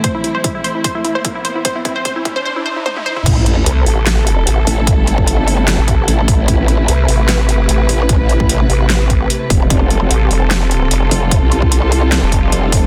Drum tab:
CC |----------------|----------------|x---------------|----------------|
HH |x-x-x-x-x-x-x-x-|x-x-x-x---------|x-x-x-o-x-x-x-o-|x-x-x-o-x-x-x-o-|
CP |----------------|----------------|--------x-------|--------x-------|
SD |----------------|----------------|--------o-------|--------o-------|
T1 |----------------|------------oo--|----------------|----------------|
T2 |----------------|---------------o|----------------|----------------|
BD |o---o---o---o---|o-o-o-o---------|o---------------|o--o------o---o-|

CC |----------------|----------------|----------------|----------------|
HH |x-x-x-o-x-x-x-o-|x-x-x-o-x-x-x-o-|x-x-x-o-x-x-x-o-|x-x-x-o-x-x-x-o-|
CP |--------x-------|--------x-------|--------x-------|--------x-------|
SD |--------o-------|--------o-------|--------o-------|--------o-------|
T1 |----------------|----------------|----------------|----------------|
T2 |----------------|----------------|----------------|----------------|
BD |o---------------|o--o------o---o-|o---------------|o--o------o---o-|